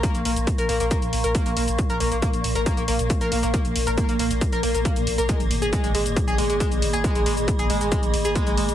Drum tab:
HH |xxoxxxoxxxoxxxox|xxoxxxoxxxoxxxox|xxoxxxoxxxoxxxox|xxoxxxoxxxoxxxox|
SH |xx-xxx-xxx-xxx-x|xx-xxx-xxx-xxx-x|xx-xxx-xxx-xxx-x|xx-xxx-xxx-xxx-x|
BD |o---o---o---o---|o---o---o---o---|o---o---o---o---|o---o---o---o---|

HH |xxoxxxoxxxoxxxox|
SH |xx-xxx-xxx-xxx-x|
BD |o---o---o---o---|